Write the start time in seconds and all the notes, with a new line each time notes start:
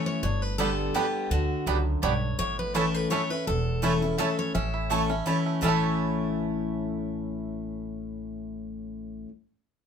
Already playing: E3 A3 C#4 E4
0.06 C#5
0.23 G1 G2 C#5
0.42 B4
0.58 D3 G3 B3 D4 G4 A4 D5 G5
0.94 D3 G3 B3 D4 G4 D5 G5
1.30 D2 D3 F#4
1.66 C#2 F#2 B3 D4 G4 D5 G5
2.02 B1 G2 B3 D4 G4 C#5 D5 G5
2.39 A1 A2 C#5
2.59 B4
2.74 E3 A3 C#4 E4 A4 C#5 A5
2.94 B4
3.10 E3 A3 C#4 E4 C#5 A5
3.30 C#4 E4 B4
3.47 E1 E2 A4
3.82 E3 A3 C#4 E4 C#5 A5
4.02 C#4 E4
4.18 E3 A3 C#4 E4 C#5 E5 A5
4.39 C#5
4.55 A1 A2 C#4 E5
4.74 E4
4.90 E3 A3 C#4 E4 A4 C#5 A5
5.10 C#4 E4
5.26 E3 A3 C#4 E4 C#5 A5
5.46 A3
5.61 A1 A2 E3 A3 C#4 E4 C#5 A5
5.66 E4 A4